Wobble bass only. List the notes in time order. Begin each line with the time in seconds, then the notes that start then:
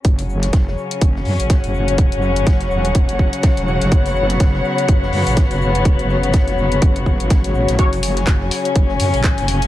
0.05 F#1
0.53 F#1
1.01 F#1
1.26 F#2
1.40 A1
1.64 F#1
2.12 F#1
2.47 F#1
2.71 E1
3.09 F#1
3.57 E1
3.82 F#1
3.92 F#1
4.40 F#1
4.89 F#1
5.13 F#2
5.27 A1
5.51 F#1
5.99 F#1
6.34 F#1
6.58 F#1
6.82 F#1
7.20 G#1
7.55 A1
7.69 A1
7.79 F#1
8.27 F#1
8.76 F#1
9.00 F#2
9.14 A1
9.38 F#1